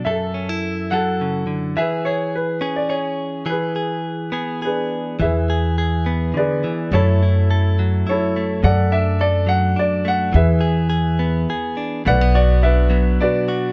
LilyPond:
<<
  \new Staff \with { instrumentName = "Grand piano" } { \time 3/4 \key e \mixolydian \tempo 4 = 105 << { e''4. fis''4. | e''8 cis''8 b'8. d''16 cis''4 | b'2 b'4 | e''2 d''4 |
cis''2 cis''4 | fis''8 e''8 d''8 fis''8 d''8 fis''8 | e''2 r4 | fis''8 d''8 e''4 d''4 | } \\ { a'4. a'4. | b'4. r4. | gis'2 <d' gis'>4 | <gis' b'>2 <gis' b'>4 |
<e' a'>2 <e' a'>4 | <a' d''>4. r4. | <gis' b'>2 r4 | <b' d''>4 b'4 <fis' b'>4 | } >> }
  \new Staff \with { instrumentName = "Clean electric guitar" } { \time 3/4 \key e \mixolydian << { a'8 cis'16 e'8. a'4. | gis'8 gis'4 gis'8 gis'4 | gis'8 gis'4 gis'8 gis'4 | r8 gis'8 gis'2 |
<fis a e' a'>8 e'8 a'4 e'8 a8~ | a8 d'8 a'4 d'8 a8 | r8 gis'8 gis'4 gis'8 d'8 | a16 b16 fis'8 d'8 b8 d'8 fis'8 | } \\ { fis,4. fis8 cis8 d8 | e4. cis'4. | e4. b4. | e4. b8 d8 e8 |
fis,4. fis4. | fis,4. fis4. | e4. b4. | b,4. fis4. | } >> }
  \new Staff \with { instrumentName = "Upright bass" } { \clef bass \time 3/4 \key e \mixolydian r2. | r2. | r2. | e,2 r4 |
fis,2 r4 | fis,2 r4 | e,2 r4 | b,,2 r4 | }
>>